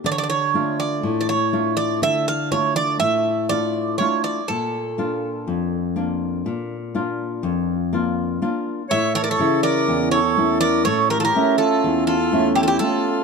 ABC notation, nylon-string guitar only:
X:1
M:9/8
L:1/8
Q:3/8=41
K:none
V:1 name="Nylon-string guitar"
D, [A,DF] A,, [A,DF] D, [A,DF] A,, [A,DF] [A,DF] | _B,, [_B,DF] F,, [B,DF] B,, [B,DF] F,, [B,DF] [B,DF] | A,, [^C,E,E] E,, [A,^CE] A,, [A,Ce] E,, [A,Ce] [A,C] |]